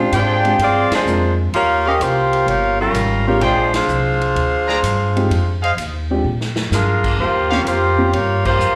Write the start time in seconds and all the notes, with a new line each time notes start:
Already playing: A#2 F3 G#3 C4 D4 F4 G4 C5
0.12 G#2 G#3 D4 F4 G#4 C5 D5 G5, hi-hat pedal, ride
0.45 F3 G#3 C4 D4 G4, ride
0.58 G2 C4 F4 G#4 D5, ride
0.91 G#3 D4 F4 C5, muted upright bass stroke, snare, ride
1.06 F2 F3 G#3 C4 D4 A#4, hi-hat pedal
1.53 D#2 A#3 F4 G4 C#5, ride
1.85 C#4 G4 A#4 C5 C#5 D#5 F5
2.00 C2 A#3 F4 G4 C5, hi-hat pedal, ride
2.33 ride
2.47 G1 A#3 F4 G4 C#5, ride
2.81 G3 C#4 F4 A#4
2.94 G#1, hi-hat pedal, ride
3.27 F3 G#3 A#3 C4 D4 F4 G4 C#5
3.40 A#1 G#3 D4 F4 G#4 C5 D5 G5, ride
3.74 D4 F4 G#4 C5, snare, ride
3.88 C2, hi-hat pedal
4.21 ride
4.35 D2, ride
4.68 G#4 C5 D5 A#5, snare
4.83 G2, hi-hat pedal, ride
5.16 F3 G#3 C4 D#4 G4, ride
5.30 F2, ride
5.62 G#4 C5 D#5 F5, ride
5.77 D#2, hi-hat pedal, ride
6.10 F3 G#3 C4 D4 G4
6.24 A#2
6.41 snare
6.56 snare
6.71 G2 D4 F4 G#4 A#4, snare, hi-hat pedal
7.04 kick, crash
7.18 D#2 A#3 F4 G4 C5
7.51 F3 A#3 C4 C#4 G4 C5 C#5 F5, snare
7.65 F2 A#3 F4 G4 C5, hi-hat pedal, ride
7.98 F3 A#3 C4 C#4 G4
8.12 G2 A#3 F4 G4 C#5, ride
8.45 A#3 F4 G4 C5, kick, crash
8.59 F2, hi-hat pedal